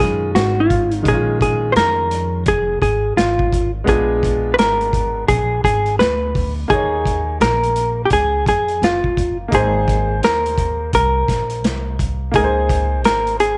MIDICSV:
0, 0, Header, 1, 5, 480
1, 0, Start_track
1, 0, Key_signature, -5, "minor"
1, 0, Tempo, 705882
1, 714, Time_signature, 4, 2, 24, 8
1, 9232, End_track
2, 0, Start_track
2, 0, Title_t, "Hollow-body jazz guitar"
2, 0, Program_c, 0, 26
2, 0, Note_on_c, 0, 68, 78
2, 220, Note_off_c, 0, 68, 0
2, 238, Note_on_c, 0, 66, 82
2, 401, Note_off_c, 0, 66, 0
2, 410, Note_on_c, 0, 65, 70
2, 700, Note_off_c, 0, 65, 0
2, 737, Note_on_c, 0, 68, 85
2, 958, Note_off_c, 0, 68, 0
2, 966, Note_on_c, 0, 68, 79
2, 1171, Note_off_c, 0, 68, 0
2, 1172, Note_on_c, 0, 72, 68
2, 1198, Note_off_c, 0, 72, 0
2, 1200, Note_on_c, 0, 70, 76
2, 1650, Note_off_c, 0, 70, 0
2, 1688, Note_on_c, 0, 68, 85
2, 1910, Note_off_c, 0, 68, 0
2, 1918, Note_on_c, 0, 68, 79
2, 2155, Note_off_c, 0, 68, 0
2, 2158, Note_on_c, 0, 65, 81
2, 2521, Note_off_c, 0, 65, 0
2, 2644, Note_on_c, 0, 68, 93
2, 3087, Note_on_c, 0, 71, 70
2, 3098, Note_off_c, 0, 68, 0
2, 3118, Note_off_c, 0, 71, 0
2, 3121, Note_on_c, 0, 70, 83
2, 3591, Note_off_c, 0, 70, 0
2, 3593, Note_on_c, 0, 68, 98
2, 3817, Note_off_c, 0, 68, 0
2, 3839, Note_on_c, 0, 68, 90
2, 4073, Note_off_c, 0, 68, 0
2, 4075, Note_on_c, 0, 71, 94
2, 4440, Note_off_c, 0, 71, 0
2, 4556, Note_on_c, 0, 68, 96
2, 5041, Note_off_c, 0, 68, 0
2, 5043, Note_on_c, 0, 70, 89
2, 5457, Note_off_c, 0, 70, 0
2, 5477, Note_on_c, 0, 67, 64
2, 5513, Note_off_c, 0, 67, 0
2, 5528, Note_on_c, 0, 68, 94
2, 5762, Note_off_c, 0, 68, 0
2, 5770, Note_on_c, 0, 68, 81
2, 6009, Note_off_c, 0, 68, 0
2, 6012, Note_on_c, 0, 65, 72
2, 6368, Note_off_c, 0, 65, 0
2, 6492, Note_on_c, 0, 68, 90
2, 6964, Note_off_c, 0, 68, 0
2, 6966, Note_on_c, 0, 70, 83
2, 7437, Note_off_c, 0, 70, 0
2, 7445, Note_on_c, 0, 70, 82
2, 8132, Note_off_c, 0, 70, 0
2, 8403, Note_on_c, 0, 68, 84
2, 8851, Note_off_c, 0, 68, 0
2, 8877, Note_on_c, 0, 70, 80
2, 9111, Note_off_c, 0, 70, 0
2, 9114, Note_on_c, 0, 68, 95
2, 9232, Note_off_c, 0, 68, 0
2, 9232, End_track
3, 0, Start_track
3, 0, Title_t, "Upright piano"
3, 0, Program_c, 1, 0
3, 0, Note_on_c, 1, 51, 65
3, 0, Note_on_c, 1, 56, 59
3, 0, Note_on_c, 1, 61, 61
3, 0, Note_on_c, 1, 65, 74
3, 685, Note_off_c, 1, 51, 0
3, 691, Note_off_c, 1, 56, 0
3, 695, Note_on_c, 1, 51, 58
3, 699, Note_off_c, 1, 61, 0
3, 704, Note_on_c, 1, 56, 55
3, 706, Note_off_c, 1, 65, 0
3, 716, Note_on_c, 1, 61, 55
3, 732, Note_on_c, 1, 63, 56
3, 772, Note_on_c, 1, 65, 68
3, 779, Note_off_c, 1, 63, 0
3, 2598, Note_off_c, 1, 51, 0
3, 2602, Note_off_c, 1, 56, 0
3, 2608, Note_off_c, 1, 61, 0
3, 2613, Note_on_c, 1, 56, 63
3, 2624, Note_on_c, 1, 59, 61
3, 2635, Note_on_c, 1, 62, 56
3, 2636, Note_off_c, 1, 65, 0
3, 2648, Note_on_c, 1, 65, 69
3, 4516, Note_off_c, 1, 56, 0
3, 4522, Note_off_c, 1, 59, 0
3, 4528, Note_off_c, 1, 62, 0
3, 4534, Note_off_c, 1, 65, 0
3, 4542, Note_on_c, 1, 58, 61
3, 4549, Note_on_c, 1, 63, 57
3, 4562, Note_on_c, 1, 68, 56
3, 4578, Note_on_c, 1, 73, 69
3, 6439, Note_off_c, 1, 58, 0
3, 6445, Note_off_c, 1, 63, 0
3, 6449, Note_on_c, 1, 58, 61
3, 6451, Note_off_c, 1, 68, 0
3, 6459, Note_off_c, 1, 73, 0
3, 6464, Note_on_c, 1, 63, 57
3, 6474, Note_on_c, 1, 68, 59
3, 6488, Note_on_c, 1, 72, 70
3, 8354, Note_off_c, 1, 58, 0
3, 8362, Note_off_c, 1, 63, 0
3, 8367, Note_off_c, 1, 68, 0
3, 8374, Note_off_c, 1, 72, 0
3, 8375, Note_on_c, 1, 58, 62
3, 8387, Note_on_c, 1, 63, 55
3, 8401, Note_on_c, 1, 68, 53
3, 8413, Note_on_c, 1, 70, 54
3, 8459, Note_on_c, 1, 72, 65
3, 8460, Note_off_c, 1, 70, 0
3, 9232, Note_off_c, 1, 58, 0
3, 9232, Note_off_c, 1, 63, 0
3, 9232, Note_off_c, 1, 68, 0
3, 9232, Note_off_c, 1, 72, 0
3, 9232, End_track
4, 0, Start_track
4, 0, Title_t, "Upright bass"
4, 0, Program_c, 2, 32
4, 0, Note_on_c, 2, 42, 86
4, 223, Note_off_c, 2, 42, 0
4, 239, Note_on_c, 2, 32, 96
4, 693, Note_off_c, 2, 32, 0
4, 715, Note_on_c, 2, 34, 95
4, 1171, Note_off_c, 2, 34, 0
4, 1196, Note_on_c, 2, 41, 94
4, 1675, Note_on_c, 2, 29, 91
4, 1686, Note_off_c, 2, 41, 0
4, 1903, Note_off_c, 2, 29, 0
4, 1917, Note_on_c, 2, 32, 83
4, 2144, Note_off_c, 2, 32, 0
4, 2154, Note_on_c, 2, 32, 76
4, 2610, Note_off_c, 2, 32, 0
4, 2637, Note_on_c, 2, 34, 101
4, 3120, Note_off_c, 2, 34, 0
4, 3120, Note_on_c, 2, 32, 90
4, 3573, Note_off_c, 2, 32, 0
4, 3595, Note_on_c, 2, 34, 97
4, 3823, Note_off_c, 2, 34, 0
4, 3837, Note_on_c, 2, 32, 82
4, 4064, Note_off_c, 2, 32, 0
4, 4074, Note_on_c, 2, 38, 88
4, 4530, Note_off_c, 2, 38, 0
4, 4556, Note_on_c, 2, 39, 98
4, 5011, Note_off_c, 2, 39, 0
4, 5034, Note_on_c, 2, 34, 90
4, 5490, Note_off_c, 2, 34, 0
4, 5512, Note_on_c, 2, 37, 93
4, 5741, Note_off_c, 2, 37, 0
4, 5756, Note_on_c, 2, 41, 76
4, 5983, Note_off_c, 2, 41, 0
4, 5996, Note_on_c, 2, 30, 86
4, 6451, Note_off_c, 2, 30, 0
4, 6477, Note_on_c, 2, 32, 104
4, 6932, Note_off_c, 2, 32, 0
4, 6955, Note_on_c, 2, 39, 87
4, 7411, Note_off_c, 2, 39, 0
4, 7437, Note_on_c, 2, 36, 88
4, 7664, Note_off_c, 2, 36, 0
4, 7674, Note_on_c, 2, 34, 73
4, 7912, Note_off_c, 2, 34, 0
4, 7912, Note_on_c, 2, 36, 88
4, 8369, Note_off_c, 2, 36, 0
4, 8394, Note_on_c, 2, 37, 93
4, 8875, Note_off_c, 2, 37, 0
4, 8875, Note_on_c, 2, 32, 88
4, 9232, Note_off_c, 2, 32, 0
4, 9232, End_track
5, 0, Start_track
5, 0, Title_t, "Drums"
5, 3, Note_on_c, 9, 38, 34
5, 71, Note_off_c, 9, 38, 0
5, 240, Note_on_c, 9, 42, 88
5, 245, Note_on_c, 9, 38, 106
5, 308, Note_off_c, 9, 42, 0
5, 313, Note_off_c, 9, 38, 0
5, 478, Note_on_c, 9, 36, 101
5, 478, Note_on_c, 9, 42, 68
5, 546, Note_off_c, 9, 36, 0
5, 546, Note_off_c, 9, 42, 0
5, 620, Note_on_c, 9, 42, 46
5, 688, Note_off_c, 9, 42, 0
5, 714, Note_on_c, 9, 42, 78
5, 716, Note_on_c, 9, 36, 95
5, 782, Note_off_c, 9, 42, 0
5, 784, Note_off_c, 9, 36, 0
5, 957, Note_on_c, 9, 36, 80
5, 964, Note_on_c, 9, 42, 67
5, 1025, Note_off_c, 9, 36, 0
5, 1032, Note_off_c, 9, 42, 0
5, 1195, Note_on_c, 9, 42, 85
5, 1203, Note_on_c, 9, 38, 97
5, 1263, Note_off_c, 9, 42, 0
5, 1271, Note_off_c, 9, 38, 0
5, 1434, Note_on_c, 9, 42, 74
5, 1502, Note_off_c, 9, 42, 0
5, 1670, Note_on_c, 9, 42, 77
5, 1675, Note_on_c, 9, 36, 73
5, 1738, Note_off_c, 9, 42, 0
5, 1743, Note_off_c, 9, 36, 0
5, 1915, Note_on_c, 9, 36, 76
5, 1922, Note_on_c, 9, 42, 75
5, 1983, Note_off_c, 9, 36, 0
5, 1990, Note_off_c, 9, 42, 0
5, 2161, Note_on_c, 9, 42, 83
5, 2165, Note_on_c, 9, 38, 100
5, 2229, Note_off_c, 9, 42, 0
5, 2233, Note_off_c, 9, 38, 0
5, 2306, Note_on_c, 9, 36, 76
5, 2374, Note_off_c, 9, 36, 0
5, 2397, Note_on_c, 9, 36, 91
5, 2402, Note_on_c, 9, 42, 62
5, 2465, Note_off_c, 9, 36, 0
5, 2470, Note_off_c, 9, 42, 0
5, 2634, Note_on_c, 9, 42, 74
5, 2635, Note_on_c, 9, 36, 103
5, 2702, Note_off_c, 9, 42, 0
5, 2703, Note_off_c, 9, 36, 0
5, 2876, Note_on_c, 9, 36, 87
5, 2884, Note_on_c, 9, 42, 75
5, 2944, Note_off_c, 9, 36, 0
5, 2952, Note_off_c, 9, 42, 0
5, 3116, Note_on_c, 9, 42, 87
5, 3124, Note_on_c, 9, 38, 104
5, 3184, Note_off_c, 9, 42, 0
5, 3192, Note_off_c, 9, 38, 0
5, 3269, Note_on_c, 9, 42, 51
5, 3337, Note_off_c, 9, 42, 0
5, 3353, Note_on_c, 9, 36, 86
5, 3358, Note_on_c, 9, 42, 64
5, 3421, Note_off_c, 9, 36, 0
5, 3426, Note_off_c, 9, 42, 0
5, 3591, Note_on_c, 9, 42, 84
5, 3595, Note_on_c, 9, 36, 80
5, 3659, Note_off_c, 9, 42, 0
5, 3663, Note_off_c, 9, 36, 0
5, 3836, Note_on_c, 9, 36, 80
5, 3843, Note_on_c, 9, 42, 78
5, 3904, Note_off_c, 9, 36, 0
5, 3911, Note_off_c, 9, 42, 0
5, 3982, Note_on_c, 9, 42, 42
5, 4050, Note_off_c, 9, 42, 0
5, 4080, Note_on_c, 9, 42, 85
5, 4085, Note_on_c, 9, 38, 108
5, 4148, Note_off_c, 9, 42, 0
5, 4153, Note_off_c, 9, 38, 0
5, 4319, Note_on_c, 9, 36, 98
5, 4326, Note_on_c, 9, 46, 49
5, 4387, Note_off_c, 9, 36, 0
5, 4394, Note_off_c, 9, 46, 0
5, 4556, Note_on_c, 9, 36, 107
5, 4557, Note_on_c, 9, 42, 75
5, 4624, Note_off_c, 9, 36, 0
5, 4625, Note_off_c, 9, 42, 0
5, 4797, Note_on_c, 9, 36, 88
5, 4804, Note_on_c, 9, 42, 77
5, 4865, Note_off_c, 9, 36, 0
5, 4872, Note_off_c, 9, 42, 0
5, 5037, Note_on_c, 9, 42, 85
5, 5045, Note_on_c, 9, 38, 101
5, 5105, Note_off_c, 9, 42, 0
5, 5113, Note_off_c, 9, 38, 0
5, 5189, Note_on_c, 9, 42, 50
5, 5257, Note_off_c, 9, 42, 0
5, 5274, Note_on_c, 9, 42, 69
5, 5342, Note_off_c, 9, 42, 0
5, 5507, Note_on_c, 9, 42, 81
5, 5513, Note_on_c, 9, 36, 80
5, 5575, Note_off_c, 9, 42, 0
5, 5581, Note_off_c, 9, 36, 0
5, 5755, Note_on_c, 9, 36, 78
5, 5760, Note_on_c, 9, 42, 78
5, 5823, Note_off_c, 9, 36, 0
5, 5828, Note_off_c, 9, 42, 0
5, 5903, Note_on_c, 9, 42, 43
5, 5971, Note_off_c, 9, 42, 0
5, 6002, Note_on_c, 9, 42, 84
5, 6007, Note_on_c, 9, 38, 98
5, 6070, Note_off_c, 9, 42, 0
5, 6075, Note_off_c, 9, 38, 0
5, 6147, Note_on_c, 9, 36, 82
5, 6215, Note_off_c, 9, 36, 0
5, 6238, Note_on_c, 9, 36, 96
5, 6242, Note_on_c, 9, 42, 67
5, 6306, Note_off_c, 9, 36, 0
5, 6310, Note_off_c, 9, 42, 0
5, 6475, Note_on_c, 9, 36, 106
5, 6475, Note_on_c, 9, 42, 76
5, 6543, Note_off_c, 9, 36, 0
5, 6543, Note_off_c, 9, 42, 0
5, 6717, Note_on_c, 9, 36, 81
5, 6725, Note_on_c, 9, 42, 70
5, 6785, Note_off_c, 9, 36, 0
5, 6793, Note_off_c, 9, 42, 0
5, 6955, Note_on_c, 9, 42, 83
5, 6963, Note_on_c, 9, 38, 103
5, 7023, Note_off_c, 9, 42, 0
5, 7031, Note_off_c, 9, 38, 0
5, 7110, Note_on_c, 9, 42, 52
5, 7178, Note_off_c, 9, 42, 0
5, 7192, Note_on_c, 9, 36, 88
5, 7194, Note_on_c, 9, 42, 69
5, 7260, Note_off_c, 9, 36, 0
5, 7262, Note_off_c, 9, 42, 0
5, 7431, Note_on_c, 9, 42, 79
5, 7434, Note_on_c, 9, 36, 80
5, 7499, Note_off_c, 9, 42, 0
5, 7502, Note_off_c, 9, 36, 0
5, 7673, Note_on_c, 9, 36, 84
5, 7677, Note_on_c, 9, 42, 77
5, 7685, Note_on_c, 9, 38, 36
5, 7741, Note_off_c, 9, 36, 0
5, 7745, Note_off_c, 9, 42, 0
5, 7753, Note_off_c, 9, 38, 0
5, 7817, Note_on_c, 9, 42, 45
5, 7885, Note_off_c, 9, 42, 0
5, 7916, Note_on_c, 9, 42, 82
5, 7920, Note_on_c, 9, 38, 104
5, 7984, Note_off_c, 9, 42, 0
5, 7988, Note_off_c, 9, 38, 0
5, 8155, Note_on_c, 9, 36, 91
5, 8157, Note_on_c, 9, 42, 69
5, 8223, Note_off_c, 9, 36, 0
5, 8225, Note_off_c, 9, 42, 0
5, 8388, Note_on_c, 9, 42, 76
5, 8392, Note_on_c, 9, 36, 109
5, 8456, Note_off_c, 9, 42, 0
5, 8460, Note_off_c, 9, 36, 0
5, 8632, Note_on_c, 9, 36, 85
5, 8634, Note_on_c, 9, 42, 78
5, 8700, Note_off_c, 9, 36, 0
5, 8702, Note_off_c, 9, 42, 0
5, 8869, Note_on_c, 9, 42, 84
5, 8877, Note_on_c, 9, 38, 103
5, 8937, Note_off_c, 9, 42, 0
5, 8945, Note_off_c, 9, 38, 0
5, 9022, Note_on_c, 9, 42, 52
5, 9090, Note_off_c, 9, 42, 0
5, 9109, Note_on_c, 9, 42, 68
5, 9177, Note_off_c, 9, 42, 0
5, 9232, End_track
0, 0, End_of_file